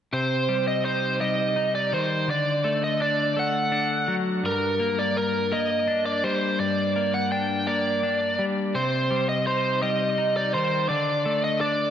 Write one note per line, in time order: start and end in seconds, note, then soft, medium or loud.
0.13 1.93 C3 soft
0.13 0.67 C5 medium
0.49 1.19 G3 soft
0.68 0.84 D#5 soft
0.84 1.55 D#4 soft
0.84 1.21 C5 soft
1.21 2.29 G3 soft
1.21 1.75 D#5 medium
1.56 2.28 D#4 soft
1.75 1.94 D5 soft
1.92 2.28 D#3 soft
1.92 2.30 C5 medium
2.28 4.08 D3 soft
2.28 2.84 D5 medium
2.64 3.36 A3 soft
2.84 3.02 D#5 soft
3.00 3.71 D4 soft
3.00 3.38 D5 medium
3.37 4.47 A3 soft
3.37 4.15 F#5 medium
3.72 5.87 D4 soft
4.08 4.44 F#3 soft
4.44 6.23 G2 soft
4.44 5.00 A#4 medium
4.80 5.51 A#3 soft
4.99 5.17 D5 soft
5.17 5.53 A#4 medium
5.52 6.95 A#3 soft
5.52 6.05 D#5 medium
5.88 7.30 D4 soft
6.06 6.24 D5 medium
6.24 8.03 G3 soft
6.24 6.60 C5 medium
6.60 8.39 G2 soft
6.60 7.15 D5 medium
6.96 7.66 A#3 soft
7.14 7.31 F#5 medium
7.32 8.02 D4 soft
7.32 7.69 G5 medium
7.67 8.75 A#3 soft
7.67 8.44 D5 medium
8.03 8.75 D4 soft
8.39 8.75 G3 soft
8.75 10.54 C3 soft
8.75 9.29 C5 medium
9.11 9.81 G3 soft
9.29 9.46 D#5 medium
9.47 10.17 D#4 soft
9.47 9.82 C5 soft
9.82 10.90 G3 soft
9.82 10.36 D#5 medium
10.18 10.90 D#4 soft
10.37 10.54 D5 medium
10.54 10.90 D#3 soft
10.54 10.88 C5 medium
10.89 11.90 D3 soft
10.89 11.44 D5 medium
11.26 11.90 A3 soft
11.44 11.61 D#5 medium
11.61 11.90 D4 soft
11.61 11.90 D5 medium